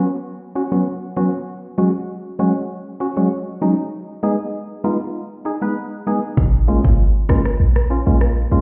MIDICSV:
0, 0, Header, 1, 4, 480
1, 0, Start_track
1, 0, Tempo, 612245
1, 1157, Time_signature, 4, 2, 24, 8
1, 6751, End_track
2, 0, Start_track
2, 0, Title_t, "Synth stab"
2, 0, Program_c, 0, 62
2, 434, Note_on_c, 0, 61, 85
2, 438, Note_on_c, 0, 66, 93
2, 487, Note_off_c, 0, 61, 0
2, 489, Note_off_c, 0, 66, 0
2, 561, Note_on_c, 0, 54, 78
2, 563, Note_on_c, 0, 59, 71
2, 564, Note_on_c, 0, 61, 71
2, 565, Note_on_c, 0, 66, 83
2, 653, Note_off_c, 0, 54, 0
2, 654, Note_off_c, 0, 59, 0
2, 655, Note_off_c, 0, 61, 0
2, 655, Note_off_c, 0, 66, 0
2, 914, Note_on_c, 0, 54, 85
2, 915, Note_on_c, 0, 59, 75
2, 917, Note_on_c, 0, 61, 74
2, 918, Note_on_c, 0, 66, 87
2, 1017, Note_off_c, 0, 54, 0
2, 1018, Note_off_c, 0, 59, 0
2, 1019, Note_off_c, 0, 61, 0
2, 1019, Note_off_c, 0, 66, 0
2, 1394, Note_on_c, 0, 54, 84
2, 1395, Note_on_c, 0, 56, 79
2, 1397, Note_on_c, 0, 61, 75
2, 1398, Note_on_c, 0, 66, 91
2, 1497, Note_off_c, 0, 54, 0
2, 1498, Note_off_c, 0, 56, 0
2, 1499, Note_off_c, 0, 61, 0
2, 1499, Note_off_c, 0, 66, 0
2, 1874, Note_on_c, 0, 54, 89
2, 1876, Note_on_c, 0, 56, 78
2, 1877, Note_on_c, 0, 61, 81
2, 1878, Note_on_c, 0, 66, 96
2, 1977, Note_off_c, 0, 54, 0
2, 1978, Note_off_c, 0, 56, 0
2, 1979, Note_off_c, 0, 61, 0
2, 1980, Note_off_c, 0, 66, 0
2, 2354, Note_on_c, 0, 61, 87
2, 2359, Note_on_c, 0, 66, 97
2, 2406, Note_off_c, 0, 61, 0
2, 2409, Note_off_c, 0, 66, 0
2, 2482, Note_on_c, 0, 54, 78
2, 2484, Note_on_c, 0, 56, 71
2, 2485, Note_on_c, 0, 61, 69
2, 2486, Note_on_c, 0, 66, 83
2, 2574, Note_off_c, 0, 54, 0
2, 2574, Note_off_c, 0, 56, 0
2, 2575, Note_off_c, 0, 61, 0
2, 2575, Note_off_c, 0, 66, 0
2, 2834, Note_on_c, 0, 54, 85
2, 2836, Note_on_c, 0, 56, 76
2, 2837, Note_on_c, 0, 61, 77
2, 2838, Note_on_c, 0, 63, 95
2, 2937, Note_off_c, 0, 54, 0
2, 2938, Note_off_c, 0, 56, 0
2, 2939, Note_off_c, 0, 61, 0
2, 2939, Note_off_c, 0, 63, 0
2, 3315, Note_on_c, 0, 56, 83
2, 3316, Note_on_c, 0, 59, 78
2, 3318, Note_on_c, 0, 63, 75
2, 3319, Note_on_c, 0, 68, 90
2, 3418, Note_off_c, 0, 56, 0
2, 3418, Note_off_c, 0, 59, 0
2, 3419, Note_off_c, 0, 63, 0
2, 3420, Note_off_c, 0, 68, 0
2, 3795, Note_on_c, 0, 56, 86
2, 3796, Note_on_c, 0, 59, 80
2, 3798, Note_on_c, 0, 63, 81
2, 3799, Note_on_c, 0, 65, 97
2, 3898, Note_off_c, 0, 56, 0
2, 3898, Note_off_c, 0, 59, 0
2, 3899, Note_off_c, 0, 63, 0
2, 3900, Note_off_c, 0, 65, 0
2, 4275, Note_on_c, 0, 63, 88
2, 4279, Note_on_c, 0, 68, 95
2, 4327, Note_off_c, 0, 63, 0
2, 4329, Note_off_c, 0, 68, 0
2, 4402, Note_on_c, 0, 56, 78
2, 4404, Note_on_c, 0, 59, 68
2, 4406, Note_on_c, 0, 63, 72
2, 4407, Note_on_c, 0, 71, 87
2, 4494, Note_off_c, 0, 56, 0
2, 4495, Note_off_c, 0, 59, 0
2, 4495, Note_off_c, 0, 63, 0
2, 4496, Note_off_c, 0, 71, 0
2, 4757, Note_on_c, 0, 56, 82
2, 4758, Note_on_c, 0, 59, 77
2, 4759, Note_on_c, 0, 63, 79
2, 4761, Note_on_c, 0, 68, 91
2, 4859, Note_off_c, 0, 56, 0
2, 4859, Note_off_c, 0, 59, 0
2, 4860, Note_off_c, 0, 63, 0
2, 4861, Note_off_c, 0, 68, 0
2, 5235, Note_on_c, 0, 56, 82
2, 5237, Note_on_c, 0, 58, 74
2, 5239, Note_on_c, 0, 61, 79
2, 5240, Note_on_c, 0, 65, 96
2, 5338, Note_off_c, 0, 56, 0
2, 5339, Note_off_c, 0, 58, 0
2, 5340, Note_off_c, 0, 61, 0
2, 5340, Note_off_c, 0, 65, 0
2, 5715, Note_on_c, 0, 56, 88
2, 5717, Note_on_c, 0, 58, 80
2, 5718, Note_on_c, 0, 61, 76
2, 5720, Note_on_c, 0, 65, 96
2, 5818, Note_off_c, 0, 56, 0
2, 5819, Note_off_c, 0, 58, 0
2, 5819, Note_off_c, 0, 61, 0
2, 5820, Note_off_c, 0, 65, 0
2, 6196, Note_on_c, 0, 61, 88
2, 6200, Note_on_c, 0, 65, 91
2, 6247, Note_off_c, 0, 61, 0
2, 6249, Note_off_c, 0, 65, 0
2, 6322, Note_on_c, 0, 56, 78
2, 6324, Note_on_c, 0, 58, 72
2, 6326, Note_on_c, 0, 61, 71
2, 6327, Note_on_c, 0, 65, 84
2, 6414, Note_off_c, 0, 56, 0
2, 6414, Note_off_c, 0, 58, 0
2, 6415, Note_off_c, 0, 61, 0
2, 6416, Note_off_c, 0, 65, 0
2, 6675, Note_on_c, 0, 56, 83
2, 6676, Note_on_c, 0, 58, 74
2, 6678, Note_on_c, 0, 61, 75
2, 6679, Note_on_c, 0, 65, 93
2, 6751, Note_off_c, 0, 56, 0
2, 6751, Note_off_c, 0, 58, 0
2, 6751, Note_off_c, 0, 61, 0
2, 6751, Note_off_c, 0, 65, 0
2, 6751, End_track
3, 0, Start_track
3, 0, Title_t, "808-style bass"
3, 0, Program_c, 1, 38
3, 4997, Note_on_c, 1, 34, 99
3, 5319, Note_off_c, 1, 34, 0
3, 5366, Note_on_c, 1, 32, 86
3, 5675, Note_off_c, 1, 32, 0
3, 5958, Note_on_c, 1, 34, 86
3, 6279, Note_off_c, 1, 34, 0
3, 6325, Note_on_c, 1, 34, 95
3, 6634, Note_off_c, 1, 34, 0
3, 6677, Note_on_c, 1, 34, 85
3, 6751, Note_off_c, 1, 34, 0
3, 6751, End_track
4, 0, Start_track
4, 0, Title_t, "Drums"
4, 4997, Note_on_c, 9, 36, 102
4, 5076, Note_off_c, 9, 36, 0
4, 5367, Note_on_c, 9, 36, 96
4, 5445, Note_off_c, 9, 36, 0
4, 5717, Note_on_c, 9, 36, 96
4, 5719, Note_on_c, 9, 37, 87
4, 5795, Note_off_c, 9, 36, 0
4, 5797, Note_off_c, 9, 37, 0
4, 5844, Note_on_c, 9, 37, 95
4, 5923, Note_off_c, 9, 37, 0
4, 6084, Note_on_c, 9, 37, 86
4, 6162, Note_off_c, 9, 37, 0
4, 6438, Note_on_c, 9, 37, 81
4, 6517, Note_off_c, 9, 37, 0
4, 6751, End_track
0, 0, End_of_file